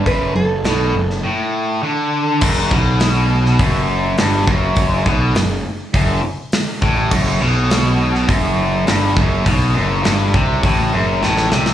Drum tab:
CC |----------------|x---------------|----------------|x---------------|
HH |o---o-----------|----o---o---o---|o---o---o---o---|----o---o---o---|
SD |----o--o--------|----o--o----o---|----o-------o---|----o--o----o---|
BD |o---------------|o-o-----o-----o-|o-o-----o-----o-|o-------o-----o-|

CC |----------------|
HH |o---o---o-------|
SD |----o-------oooo|
BD |o-----o-o-------|